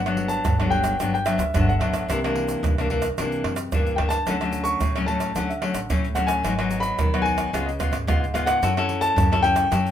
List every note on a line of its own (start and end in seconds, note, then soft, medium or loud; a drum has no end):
0.00 0.37 G1 loud
0.00 0.43 G2 medium
0.00 0.26 F#5 medium
0.06 0.56 F#3 medium
0.06 0.56 B3 medium
0.06 0.56 D4 medium
0.06 pandeiro soft
0.06 tamborim medium
0.06 shaker soft
0.17 pandeiro medium
0.28 0.68 A5 loud
0.28 pandeiro medium
0.28 shaker medium
0.45 0.92 G1 loud
0.45 0.97 D3 soft
0.45 pandeiro medium
0.45 tamborim medium
0.45 shaker medium
0.45 surdo loud
0.60 0.96 F#3 medium
0.60 0.97 B3 medium
0.60 0.97 D4 medium
0.60 pandeiro soft
0.60 tamborim medium
0.60 shaker soft
0.70 1.13 G5 loud
0.70 pandeiro medium
0.84 pandeiro medium
0.84 tamborim medium
0.84 shaker medium
1.00 1.35 G1 medium
1.00 1.52 G2 soft
1.00 1.17 F#3 medium
1.00 1.17 B3 medium
1.00 1.17 D4 medium
1.00 pandeiro medium
1.00 tamborim medium
1.00 shaker medium
1.00 surdo medium
1.14 1.28 G5 medium
1.14 pandeiro soft
1.14 shaker soft
1.26 1.43 F#3 medium
1.26 1.43 B3 medium
1.26 1.43 D4 medium
1.26 1.69 E5 medium
1.26 pandeiro medium
1.26 tamborim medium
1.26 shaker medium
1.38 1.51 D2 medium
1.38 pandeiro medium
1.38 tamborim medium
1.38 shaker medium
1.54 1.77 G1 loud
1.54 2.06 D3 medium
1.54 1.71 F#3 medium
1.54 1.71 B3 medium
1.54 1.71 D4 medium
1.54 pandeiro medium
1.54 tamborim medium
1.54 shaker medium
1.54 surdo loud
1.69 1.74 F#5 medium
1.69 pandeiro soft
1.69 shaker soft
1.79 2.04 A1 medium
1.79 2.06 F#3 medium
1.79 2.07 B3 medium
1.79 2.07 D4 medium
1.79 3.40 E5 medium
1.79 pandeiro medium
1.79 tamborim medium
1.94 pandeiro medium
1.94 tamborim medium
1.94 shaker medium
2.08 2.55 C2 loud
2.08 2.61 C3 medium
2.08 2.18 E3 medium
2.08 2.19 A#3 medium
2.08 2.19 D4 medium
2.08 pandeiro medium
2.08 tamborim medium
2.08 shaker medium
2.08 surdo medium
2.24 2.74 E3 medium
2.24 2.74 A#3 medium
2.24 2.74 D4 medium
2.24 pandeiro soft
2.24 tamborim medium
2.24 shaker soft
2.36 pandeiro medium
2.48 pandeiro medium
2.48 shaker medium
2.63 3.09 C2 loud
2.63 3.16 G2 soft
2.63 pandeiro medium
2.63 tamborim medium
2.63 shaker medium
2.63 surdo loud
2.78 2.87 E3 medium
2.78 2.87 A#3 medium
2.78 2.88 D4 medium
2.78 pandeiro soft
2.78 tamborim medium
2.78 shaker soft
2.90 3.06 E3 medium
2.90 3.07 A#3 medium
2.90 3.07 D4 medium
2.90 pandeiro medium
3.02 pandeiro medium
3.02 tamborim medium
3.02 shaker medium
3.18 3.41 C2 medium
3.18 3.70 C3 medium
3.18 3.53 E3 medium
3.18 3.54 A#3 medium
3.18 3.54 D4 medium
3.18 pandeiro medium
3.18 tamborim medium
3.18 shaker medium
3.18 surdo medium
3.32 pandeiro soft
3.32 shaker soft
3.44 3.69 F#2 medium
3.44 pandeiro medium
3.44 tamborim medium
3.56 pandeiro medium
3.56 tamborim medium
3.56 shaker medium
3.72 3.97 E2 medium
3.72 4.25 G2 medium
3.72 3.96 E3 medium
3.72 3.96 A#3 medium
3.72 3.96 D4 medium
3.72 pandeiro medium
3.72 tamborim medium
3.72 shaker medium
3.72 surdo loud
3.87 pandeiro soft
3.87 shaker soft
3.96 4.23 D2 medium
3.96 4.17 E3 medium
3.96 4.17 A#3 medium
3.96 4.17 D4 medium
3.96 4.01 G5 medium
3.96 pandeiro medium
3.96 tamborim medium
4.09 4.61 A5 loud
4.09 pandeiro medium
4.09 tamborim medium
4.09 shaker medium
4.27 4.73 D2 medium
4.27 4.79 D3 medium
4.27 4.35 F#3 medium
4.27 4.35 A3 medium
4.27 4.36 C#4 medium
4.27 pandeiro medium
4.27 tamborim medium
4.27 shaker medium
4.27 surdo medium
4.41 4.91 F#3 medium
4.41 4.91 A3 medium
4.41 4.91 C#4 medium
4.41 pandeiro soft
4.41 tamborim medium
4.41 shaker soft
4.53 pandeiro medium
4.53 shaker medium
4.64 5.03 C#6 loud
4.64 pandeiro medium
4.64 shaker medium
4.81 5.28 D2 loud
4.81 5.33 A2 medium
4.81 pandeiro medium
4.81 tamborim medium
4.81 shaker medium
4.81 surdo loud
4.96 5.05 F#3 medium
4.96 5.05 A3 medium
4.96 5.05 C#4 medium
4.96 pandeiro soft
4.96 tamborim medium
4.96 shaker soft
5.06 5.31 F#3 medium
5.06 5.31 A3 medium
5.06 5.31 C#4 medium
5.06 5.49 A5 loud
5.06 pandeiro medium
5.20 pandeiro medium
5.20 tamborim medium
5.20 shaker medium
5.36 5.70 D2 medium
5.36 5.88 D3 medium
5.36 5.52 F#3 medium
5.36 5.52 A3 soft
5.36 5.52 C#4 medium
5.36 pandeiro medium
5.36 tamborim medium
5.36 shaker medium
5.36 surdo medium
5.50 5.56 E5 medium
5.50 pandeiro soft
5.50 shaker soft
5.62 5.78 F#3 medium
5.62 5.79 A3 medium
5.62 5.79 C#4 medium
5.62 pandeiro medium
5.62 tamborim medium
5.74 5.87 A1 medium
5.74 pandeiro medium
5.74 tamborim medium
5.74 shaker medium
5.90 6.13 D2 loud
5.90 6.42 A2 medium
5.90 6.06 F#3 medium
5.90 6.06 A3 medium
5.90 6.07 C#4 medium
5.90 pandeiro medium
5.90 tamborim medium
5.90 shaker medium
5.90 surdo loud
6.04 pandeiro soft
6.04 shaker soft
6.15 6.39 D2 loud
6.15 6.42 F#3 medium
6.15 6.42 A3 medium
6.15 6.42 C#4 medium
6.15 6.30 F#5 medium
6.15 pandeiro medium
6.15 tamborim medium
6.15 shaker medium
6.27 6.85 G#5 loud
6.27 pandeiro medium
6.27 tamborim medium
6.27 shaker medium
6.44 6.90 G#1 medium
6.44 6.97 G#2 medium
6.44 6.53 F#3 medium
6.44 6.53 B3 medium
6.44 6.53 D#4 medium
6.44 pandeiro medium
6.44 tamborim medium
6.44 shaker medium
6.44 surdo medium
6.59 7.09 F#3 medium
6.59 7.09 B3 medium
6.59 7.09 D#4 medium
6.59 pandeiro soft
6.59 tamborim medium
6.59 shaker soft
6.71 pandeiro medium
6.71 shaker medium
6.80 7.21 B5 loud
6.80 pandeiro medium
6.80 shaker medium
6.99 7.45 B1 loud
6.99 7.51 D#3 medium
6.99 pandeiro medium
6.99 tamborim medium
6.99 shaker medium
6.99 surdo loud
7.14 7.50 F#3 medium
7.14 7.50 B3 medium
7.14 7.50 D#4 medium
7.14 pandeiro soft
7.14 tamborim medium
7.14 shaker soft
7.22 7.66 G#5 loud
7.22 pandeiro medium
7.38 pandeiro medium
7.38 tamborim medium
7.38 shaker medium
7.53 7.88 C#2 loud
7.53 8.05 C#3 medium
7.53 7.69 G#3 medium
7.53 7.70 B3 medium
7.53 7.70 F4 medium
7.53 pandeiro medium
7.53 tamborim medium
7.53 shaker medium
7.53 surdo medium
7.66 7.72 D#5 medium
7.66 pandeiro soft
7.66 shaker soft
7.80 7.96 G#3 medium
7.80 7.97 B3 medium
7.80 7.97 F4 medium
7.80 pandeiro medium
7.80 tamborim medium
7.80 shaker medium
7.80 surdo medium
7.91 8.04 G#1 medium
7.91 pandeiro medium
7.91 tamborim medium
7.91 shaker medium
8.07 8.31 C#2 loud
8.07 8.60 G#2 medium
8.07 8.24 G#3 medium
8.07 8.24 B3 medium
8.07 8.24 F4 medium
8.07 pandeiro medium
8.07 tamborim medium
8.07 shaker medium
8.07 surdo loud
8.24 pandeiro soft
8.24 shaker soft
8.34 8.58 C#2 medium
8.34 8.60 G#3 medium
8.34 8.60 B3 medium
8.34 8.60 F4 medium
8.34 8.39 F5 medium
8.34 pandeiro medium
8.34 tamborim medium
8.34 shaker medium
8.46 9.04 F#5 loud
8.46 pandeiro medium
8.46 tamborim medium
8.46 shaker medium
8.62 9.09 F#2 medium
8.62 9.14 F#3 medium
8.62 8.72 C#4 medium
8.62 8.72 E4 medium
8.62 8.72 A4 medium
8.62 pandeiro medium
8.62 tamborim medium
8.62 shaker medium
8.62 surdo medium
8.77 9.27 C#4 medium
8.77 9.27 E4 medium
8.77 9.27 A4 medium
8.77 pandeiro soft
8.77 tamborim medium
8.77 shaker soft
8.89 pandeiro medium
9.01 9.44 A5 loud
9.01 pandeiro medium
9.01 shaker medium
9.16 9.63 F#2 loud
9.16 9.69 C#3 medium
9.16 pandeiro medium
9.16 tamborim medium
9.16 shaker medium
9.16 surdo loud
9.32 9.40 C#4 medium
9.32 9.41 E4 medium
9.32 9.41 A4 medium
9.32 pandeiro soft
9.32 tamborim medium
9.32 shaker soft
9.43 9.67 C#4 medium
9.43 9.67 E4 medium
9.43 9.67 A4 medium
9.43 9.91 G5 loud
9.43 pandeiro medium
9.56 pandeiro medium
9.56 tamborim medium
9.56 shaker medium
9.71 9.91 F#2 loud
9.71 9.91 F#3 medium
9.71 9.88 C#4 medium
9.71 9.88 E4 medium
9.71 9.88 A4 medium
9.71 pandeiro medium
9.71 tamborim medium
9.71 shaker medium
9.71 surdo medium
9.86 pandeiro soft
9.86 shaker soft